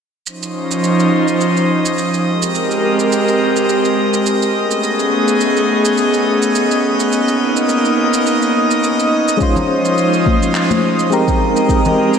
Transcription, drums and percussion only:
0.27 shaker medium
0.43 shaker soft
0.71 shaker medium
0.84 shaker soft
1.00 shaker soft
1.28 shaker soft
1.41 shaker soft
1.57 shaker soft
1.86 shaker medium
1.98 shaker soft
2.14 shaker soft
2.42 shaker medium
2.55 shaker medium
2.71 shaker soft
3.00 shaker medium
3.12 shaker soft
3.28 shaker soft
3.56 shaker medium
3.69 shaker soft
3.85 shaker soft
4.14 shaker medium
4.26 shaker soft
4.42 shaker soft
4.71 shaker medium
4.84 shaker medium
5.00 shaker soft
5.28 shaker medium
5.41 shaker medium
5.57 shaker soft
5.85 shaker medium
5.98 shaker medium
6.14 shaker soft
6.42 shaker medium
6.55 shaker soft
6.71 shaker soft
7.00 shaker medium
7.12 shaker medium
7.28 shaker soft
7.57 shaker medium
7.69 shaker medium
7.85 shaker soft
8.14 shaker medium
8.27 shaker medium
8.42 shaker soft
8.71 shaker medium
8.84 shaker soft
9.00 shaker soft
9.28 shaker medium
9.41 kick loud
9.41 shaker medium
9.56 low conga medium
9.56 shaker soft
9.85 shaker medium
9.98 shaker soft
10.14 shaker soft
10.26 kick loud
10.26 high conga medium
10.42 shaker medium
10.55 clap medium
10.55 shaker medium
10.71 high conga medium
10.71 shaker soft
10.99 shaker medium
11.12 shaker medium
11.28 kick medium
11.28 shaker soft
11.57 shaker medium
11.69 kick medium
11.69 shaker medium
11.85 low conga medium
11.85 shaker soft
12.14 shaker medium

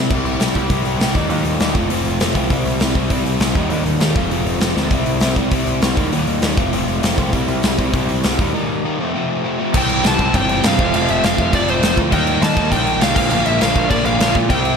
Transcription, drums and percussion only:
0.10 kick loud
0.10 crash medium
0.26 open hi-hat soft
0.40 snare medium
0.40 open hi-hat medium
0.55 kick medium
0.55 open hi-hat soft
0.70 kick loud
0.70 open hi-hat medium
0.85 open hi-hat soft
1.00 snare loud
1.00 open hi-hat medium
1.15 kick medium
1.15 open hi-hat soft
1.30 open hi-hat medium
1.45 open hi-hat medium
1.60 snare medium
1.60 open hi-hat medium
1.75 kick medium
1.75 open hi-hat soft
1.90 open hi-hat medium
2.05 open hi-hat soft
2.20 snare loud
2.20 open hi-hat medium
2.35 kick medium
2.35 open hi-hat medium
2.50 kick medium
2.50 open hi-hat medium
2.65 open hi-hat medium
2.80 snare medium
2.80 open hi-hat medium
2.95 kick medium
2.95 open hi-hat soft
3.10 kick medium
3.10 open hi-hat medium
3.25 open hi-hat soft
3.40 snare loud
3.40 open hi-hat medium
3.55 kick medium
3.55 open hi-hat soft
3.70 open hi-hat medium
3.86 open hi-hat soft
4.00 snare medium
4.00 open hi-hat medium
4.16 kick loud
4.16 open hi-hat soft
4.31 open hi-hat medium
4.46 open hi-hat soft
4.61 snare loud
4.61 open hi-hat medium
4.77 snare medium
4.91 kick loud
4.91 open hi-hat medium
5.06 open hi-hat medium
5.20 snare medium
5.20 open hi-hat medium
5.36 kick medium
5.36 open hi-hat soft
5.51 kick medium
5.51 open hi-hat medium
5.67 open hi-hat medium
5.82 snare loud
5.82 open hi-hat medium
5.97 kick medium
5.97 open hi-hat soft
6.12 open hi-hat medium
6.27 open hi-hat soft
6.42 snare loud
6.42 open hi-hat medium
6.57 kick loud
6.57 open hi-hat soft
6.73 open hi-hat medium
6.88 open hi-hat soft
7.03 snare loud
7.03 open hi-hat medium
7.18 kick medium
7.18 open hi-hat medium
7.33 kick medium
7.33 open hi-hat medium
7.48 open hi-hat medium
7.63 snare loud
7.63 open hi-hat medium
7.79 kick medium
7.79 open hi-hat medium
7.94 kick loud
7.94 open hi-hat medium
8.09 open hi-hat medium
8.24 snare loud
8.24 open hi-hat medium
8.39 kick medium
8.39 open hi-hat soft
9.74 kick loud
9.74 crash loud
9.74 crash medium
9.89 crash medium
10.04 snare medium
10.04 crash medium
10.19 kick medium
10.19 crash medium
10.34 kick loud
10.34 crash medium
10.49 crash medium
10.63 snare loud
10.63 crash medium
10.79 kick loud
10.79 crash medium
10.94 crash medium
11.08 crash medium
11.24 snare loud
11.24 crash medium
11.38 kick medium
11.38 crash medium
11.53 kick loud
11.53 crash medium
11.68 crash medium
11.83 snare loud
11.83 crash medium
11.97 kick medium
11.97 crash medium
12.12 kick medium
12.12 crash medium
12.27 crash medium
12.42 snare loud
12.42 crash medium
12.57 kick medium
12.57 crash medium
12.72 kick medium
12.72 crash medium
12.87 crash medium
13.01 snare loud
13.01 crash medium
13.16 kick loud
13.16 crash loud
13.31 crash medium
13.46 crash medium
13.61 snare loud
13.61 crash medium
13.75 kick medium
13.75 crash medium
13.91 kick medium
13.91 crash medium
14.05 crash medium
14.20 snare loud
14.20 crash medium
14.35 kick medium
14.35 crash medium
14.50 kick loud
14.50 crash medium
14.65 crash medium

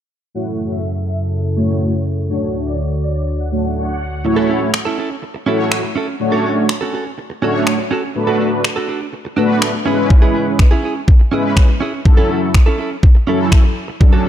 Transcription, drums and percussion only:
4.74 finger snap loud
5.72 finger snap loud
6.69 finger snap loud
7.67 finger snap loud
8.64 finger snap loud
9.62 finger snap loud
10.10 kick loud
10.59 finger snap loud
10.59 kick loud
11.08 kick loud
11.57 finger snap loud
11.57 kick loud
12.05 kick loud
12.54 finger snap loud
12.54 kick medium
13.03 kick loud
13.52 finger snap loud
13.52 kick loud
14.01 kick loud

